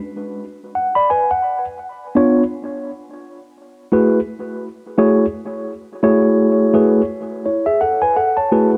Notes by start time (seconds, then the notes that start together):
0.75 F#5
0.95 D5 B5
1.10 B4 G#5
1.31 F#5
2.15 B3 D4 F4 C#5
3.92 A3 E4 F#4 G#4 B4
4.98 A3 E4 F#4 G#4 C#5
6.03 A3 E4 F#4 G#4 C#5
6.74 A3 E4 F#4 G#4 B4
7.46 E4 C#5
7.66 G#4 E5
7.81 A4 F#5
8.02 B4 G#5
8.16 A4 F#5
8.37 C#5 A5
8.52 A3 E4 F#4 G#4 B4